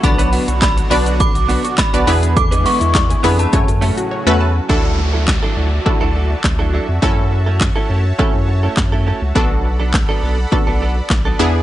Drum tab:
HH |xxoxxxoxxxoxxxox|xxoxxxoxxxox----|----------------|----------------|
SH |xxxxxxxxxxxxxxxx|xxxxxxxxxxxx----|----------------|----------------|
CP |----x-------x---|----x-----------|----x-------x---|----x-------x---|
SD |----o-------o---|----o-----------|----o-------o---|----o-------o---|
BD |o---o---o---o---|o---o---o-------|o---o---o---o---|o---o---o---o---|

HH |----------------|
SH |----------------|
CP |----x-------x---|
SD |----o-------o---|
BD |o---o---o---o---|